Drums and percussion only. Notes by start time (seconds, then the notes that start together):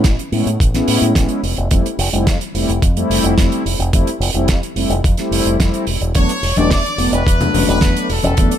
0.04 kick, snare, closed hi-hat
0.19 closed hi-hat
0.32 open hi-hat
0.47 closed hi-hat
0.60 kick, closed hi-hat
0.74 snare, closed hi-hat
0.88 open hi-hat
1.02 closed hi-hat
1.15 kick, snare, closed hi-hat
1.29 closed hi-hat
1.44 open hi-hat
1.57 closed hi-hat
1.71 kick, closed hi-hat
1.86 closed hi-hat
1.99 open hi-hat
2.13 closed hi-hat
2.27 kick, snare, closed hi-hat
2.41 closed hi-hat
2.55 open hi-hat
2.69 closed hi-hat
2.82 kick, closed hi-hat
2.97 closed hi-hat
3.11 open hi-hat
3.24 closed hi-hat
3.38 kick, snare, closed hi-hat
3.52 closed hi-hat
3.66 open hi-hat
3.80 closed hi-hat
3.93 kick, closed hi-hat
4.07 closed hi-hat
4.22 open hi-hat
4.35 closed hi-hat
4.48 kick, snare, closed hi-hat
4.63 closed hi-hat
4.76 open hi-hat
4.90 closed hi-hat
5.04 kick, closed hi-hat
5.17 snare, closed hi-hat
5.32 open hi-hat
5.46 closed hi-hat
5.60 kick, snare, closed hi-hat
5.74 closed hi-hat
5.87 open hi-hat
6.01 closed hi-hat
6.15 kick, closed hi-hat
6.29 closed hi-hat
6.43 open hi-hat
6.56 closed hi-hat, high conga
6.70 kick, snare, closed hi-hat
6.86 closed hi-hat
6.98 open hi-hat
7.13 closed hi-hat
7.27 kick, closed hi-hat
7.41 closed hi-hat, low conga
7.54 open hi-hat, high conga, low conga
7.69 closed hi-hat
7.81 kick, snare, closed hi-hat
7.96 closed hi-hat
8.10 open hi-hat
8.23 closed hi-hat, high conga
8.37 kick, closed hi-hat
8.51 closed hi-hat